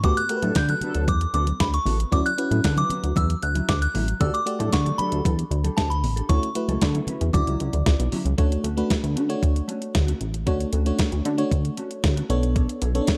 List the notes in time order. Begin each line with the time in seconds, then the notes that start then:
0.04 D2 A3 B3 F#4 G4 A4 B4 D6, kick, closed hi-hat, muted conga, low conga
0.17 F#6, muted clean electric guitar stroke, closed hi-hat
0.29 A3 F#4 G4 A#4, muted clean electric guitar stroke, closed hi-hat
0.37 B4
0.42 A2 F#3 B3 D4 F#4 A4, closed hi-hat, high conga
0.55 D3 G6, muted clean electric guitar stroke, kick, snare, closed hi-hat
0.69 B3 F#4 A4 F#6, closed hi-hat, high conga
0.81 F#3 B3 D4 F#4 A4 B4, closed hi-hat, high conga, low conga
0.95 D2, muted clean electric guitar stroke, closed hi-hat
1.08 E2 D6, kick, closed hi-hat, muted conga, high conga
1.21 muted clean electric guitar stroke, closed hi-hat
1.34 D2 B3 F#4 A4 D6, closed hi-hat, muted conga
1.47 muted clean electric guitar stroke, closed hi-hat, high conga
1.60 D2 B5, kick, snare, closed hi-hat, muted conga
1.73 C#6, muted clean electric guitar stroke, closed hi-hat
1.86 A1 B3 F#4 A4, open hi-hat, low conga
1.99 muted clean electric guitar stroke, closed hi-hat
2.12 D2 F#3 C#4 E4 F#4 D5 D6, kick, closed hi-hat, muted conga, low conga
2.25 F#6, muted clean electric guitar stroke, closed hi-hat
2.38 C#4 E4 F#4 B4, muted clean electric guitar stroke, closed hi-hat
2.51 A2 F#3 C#4 E4, closed hi-hat, high conga
2.64 D3 F#6, muted clean electric guitar stroke, kick, snare, closed hi-hat
2.77 F#3 C#4 E4 D6, closed hi-hat, high conga
2.90 F#3 C#4 F#4, closed hi-hat, high conga, low conga
3.03 D2, muted clean electric guitar stroke, closed hi-hat
3.16 E2 F#3 C#4 E4 E6, kick, closed hi-hat, muted conga, high conga
3.29 muted clean electric guitar stroke, closed hi-hat
3.42 D2 F#6, muted clean electric guitar stroke, closed hi-hat
3.55 F#3 C#4 E4, closed hi-hat, high conga
3.69 D2 D6, kick, snare, closed hi-hat
3.81 F#6, muted clean electric guitar stroke, closed hi-hat
3.94 A1 F#3 C#4 E4, open hi-hat, muted conga, low conga
4.08 muted clean electric guitar stroke, closed hi-hat
4.20 D2 A3 D4 F#4 G4 A4 D5 E6, kick, closed hi-hat, muted conga, low conga
4.33 D6, muted clean electric guitar stroke, closed hi-hat
4.46 A3 F#4 G4 D5, muted clean electric guitar stroke, closed hi-hat
4.59 A2 F#3 D4 G4 A4, closed hi-hat, high conga
4.72 D3 C#6, muted clean electric guitar stroke, kick, snare, closed hi-hat
4.85 D4 G4 A4, closed hi-hat, high conga
4.98 F#3 D4 G4 A4 B4 B5, closed hi-hat, high conga, low conga
5.11 D2, muted clean electric guitar stroke, closed hi-hat
5.24 E2 D4 G4 A4, kick, closed hi-hat, muted conga, high conga
5.38 muted clean electric guitar stroke, closed hi-hat
5.51 D2, muted clean electric guitar stroke, closed hi-hat
5.64 D4 G4 A4, closed hi-hat, high conga
5.77 D2 D4 G4 A4 A5, kick, snare, closed hi-hat, muted conga
5.90 B5, muted clean electric guitar stroke, closed hi-hat
6.03 A1, muted clean electric guitar stroke, open hi-hat, muted conga, low conga
6.16 D4 G4 A4, closed hi-hat
6.29 D2 A3 C#4 E4 F#4 A4 C#5 C#6, kick, closed hi-hat, low conga
6.43 muted clean electric guitar stroke, closed hi-hat
6.55 A3 E4 F#4 B4, muted clean electric guitar stroke, closed hi-hat, muted conga
6.68 C#2 C#4 E4 A4, closed hi-hat, high conga
6.82 D3, kick, snare, closed hi-hat, muted conga
6.94 C#4 E4 A4, closed hi-hat, high conga
7.07 C#4 E4 B4, closed hi-hat, high conga, low conga
7.21 E2, muted clean electric guitar stroke, closed hi-hat
7.33 D2 C#3 E4 F#4 D5 D6, kick, closed hi-hat, muted conga, high conga
7.47 C#2 F#3 C#4 E4, closed hi-hat
7.60 C#2 F#3 C#4 E4, closed hi-hat, muted conga
7.73 D2, muted clean electric guitar stroke, closed hi-hat, high conga
7.86 C#2, kick, snare, closed hi-hat
7.99 B1, muted clean electric guitar stroke, closed hi-hat
8.12 F#3 C#4 E4, open hi-hat, muted conga, low conga
8.25 C#2, muted clean electric guitar stroke, closed hi-hat
8.38 D2 A3 C#4 D4 F#4 C#5, kick, closed hi-hat
8.51 muted clean electric guitar stroke, closed hi-hat
8.64 D2 A3 C#4 F#4, closed hi-hat
8.77 A3 C#4 D4 F#4 B4, closed hi-hat
8.90 kick, snare, closed hi-hat
9.03 D2, muted clean electric guitar stroke, closed hi-hat
9.16 D3 A3 C#4 F#4, closed hi-hat
9.29 A3 D4 F#4 C#5, muted clean electric guitar stroke, closed hi-hat
9.43 D2, kick, closed hi-hat
9.55 muted clean electric guitar stroke, closed hi-hat
9.68 A3 C#4 F#4, closed hi-hat
9.81 muted clean electric guitar stroke, closed hi-hat
9.95 D2, kick, snare, closed hi-hat
10.07 A3 C#4 F#4, closed hi-hat
10.21 A1, muted clean electric guitar stroke, closed hi-hat
10.34 muted clean electric guitar stroke, closed hi-hat
10.46 D2 A3 C#4 D4 F#4 C#5, kick, closed hi-hat
10.60 muted clean electric guitar stroke, closed hi-hat
10.73 D2 A3 C#4 F#4, closed hi-hat
10.86 A3 C#4 D4 F#4 C#5, closed hi-hat
10.99 kick, snare, closed hi-hat
11.12 D2, muted clean electric guitar stroke, closed hi-hat
11.25 D3 A3 C#4 F#4, closed hi-hat
11.38 A3 D4 F#4 C#5, muted clean electric guitar stroke, closed hi-hat
11.52 D2, kick, closed hi-hat
11.64 muted clean electric guitar stroke, closed hi-hat
11.77 A3 C#4 F#4, closed hi-hat
11.91 muted clean electric guitar stroke, closed hi-hat
12.04 D2, muted clean electric guitar stroke, kick, snare, closed hi-hat
12.16 A3 C#4 F#4, closed hi-hat
12.30 B1 B3 D4 A4 C#5, muted clean electric guitar stroke, closed hi-hat
12.43 muted clean electric guitar stroke, closed hi-hat
12.55 D4 A4 C#5, kick, closed hi-hat
12.69 muted clean electric guitar stroke, closed hi-hat
12.81 B1 D4 A4 C#5, closed hi-hat
12.95 B3 C#4 D4 A4 C#5, closed hi-hat
13.01 D4
13.07 kick, snare, closed hi-hat